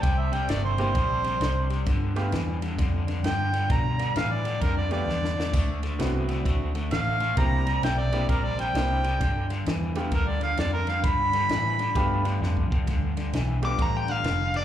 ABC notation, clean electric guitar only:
X:1
M:4/4
L:1/8
Q:"Swing" 1/4=131
K:Gmix
V:1 name="Clean electric guitar" clef=bass
[C,G,] [C,G,] [C,A,] [C,G,] [C,G,] [C,G,] [C,G,] [C,G,] | [G,,D,] [G,,D,] [G,,E,] [G,,D,] [G,,D,] [G,,D,] [G,,D,] [G,,D,] | [G,,D,] [G,,D,] [G,,E,] [G,,D,] [G,,D,] [G,,D,] [G,,D,] [G,,D,] | [D,A,] [D,A,] [D,B,] [D,A,] [D,A,] [D,A,] [D,A,] [D,A,] |
[C,G,] [C,G,] [C,A,] [C,G,] [C,G,] [C,G,] [C,G,] [C,G,] | [G,,D,] [G,,D,] [G,,E,] [G,,D,] [G,,D,] [G,,D,] [G,,D,] [G,,D,] | [G,,D,] [G,,D,] [G,,E,] [G,,D,] [G,,D,] [G,,D,] [G,,D,] [G,,D,] | [G,,D,] [G,,D,] [G,,E,] [G,,D,] [G,,D,] [G,,D,] [G,,D,] [G,,D,] |]